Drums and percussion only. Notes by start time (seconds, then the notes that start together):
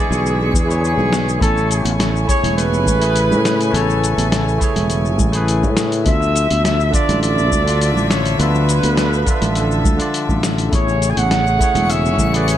0.12 cabasa
0.26 cabasa
0.41 high conga
0.54 kick, cabasa
0.71 cabasa
0.84 cabasa
0.99 low conga
1.12 snare, high conga, cabasa
1.29 cabasa
1.41 kick, closed hi-hat, high conga, cabasa
1.57 cabasa
1.71 closed hi-hat, cabasa
1.85 closed hi-hat, high conga, cabasa
2.00 snare, closed hi-hat, cabasa
2.16 cabasa
2.29 kick, closed hi-hat, cabasa
2.44 closed hi-hat, low conga, cabasa
2.58 closed hi-hat, cabasa
2.73 high conga, cabasa
2.86 kick, low conga, cabasa
3.02 closed hi-hat, cabasa
3.16 closed hi-hat, cabasa
3.32 low conga, cabasa
3.45 snare, closed hi-hat, cabasa
3.61 closed hi-hat, cabasa
3.74 closed hi-hat, high conga, cabasa
3.90 cabasa
4.04 closed hi-hat, cabasa
4.18 closed hi-hat, high conga, cabasa
4.32 snare, closed hi-hat, cabasa
4.48 cabasa
4.61 kick, closed hi-hat, cabasa
4.76 closed hi-hat, low conga, cabasa
4.90 closed hi-hat, cabasa
5.05 cabasa
5.19 kick, low conga, cabasa
5.33 closed hi-hat, cabasa
5.48 closed hi-hat, cabasa
5.63 kick, low conga, cabasa
5.77 snare, closed hi-hat, cabasa
5.92 closed hi-hat, cabasa
6.06 kick, closed hi-hat, high conga, cabasa
6.22 cabasa
6.36 closed hi-hat, cabasa
6.51 closed hi-hat, high conga, cabasa
6.65 snare, closed hi-hat, cabasa
6.80 cabasa
6.94 kick, closed hi-hat, cabasa
7.09 closed hi-hat, low conga, cabasa
7.23 closed hi-hat, cabasa
7.38 high conga, cabasa
7.51 kick, low conga, cabasa
7.68 closed hi-hat, cabasa
7.81 closed hi-hat, cabasa
7.97 low conga, cabasa
8.11 snare, closed hi-hat, cabasa
8.26 closed hi-hat, cabasa
8.40 closed hi-hat, high conga, cabasa
8.55 cabasa
8.69 closed hi-hat, cabasa
8.83 closed hi-hat, high conga, cabasa
8.97 snare, closed hi-hat, cabasa
9.13 cabasa
9.27 kick, closed hi-hat, cabasa
9.42 closed hi-hat, low conga, cabasa
9.55 closed hi-hat, cabasa
9.71 cabasa
9.85 kick, low conga, cabasa
10.00 closed hi-hat, cabasa
10.14 closed hi-hat, cabasa
10.29 kick, low conga, cabasa
10.43 snare, closed hi-hat, cabasa
10.58 closed hi-hat, cabasa
10.72 kick, closed hi-hat, high conga, cabasa
10.89 cabasa
11.02 closed hi-hat, cabasa
11.17 closed hi-hat, high conga, cabasa
11.31 snare, closed hi-hat, cabasa
11.47 cabasa
11.60 kick, closed hi-hat, cabasa
11.75 closed hi-hat, low conga, cabasa
11.90 closed hi-hat, cabasa
12.05 high conga, cabasa
12.19 kick, low conga, cabasa
12.34 closed hi-hat, cabasa
12.48 closed hi-hat, cabasa